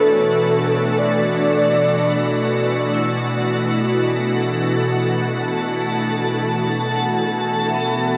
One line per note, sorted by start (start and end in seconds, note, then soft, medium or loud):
0.00 8.17 B2 medium
0.00 8.17 E3 medium
0.00 8.17 A3 medium
0.00 1.12 B3 medium
0.00 8.17 D4 medium
0.00 8.17 F#4 medium
0.00 4.36 A4 medium
0.00 0.99 A4 loud
0.00 3.88 B4 soft
0.00 2.50 E6 soft
0.98 2.91 D5 medium
2.95 7.44 E4 medium
3.86 8.17 A4 medium
3.86 8.17 A5 medium
5.81 7.94 A3 medium
6.96 7.88 F#5 medium
7.68 8.17 E5 medium
7.74 8.17 B3 medium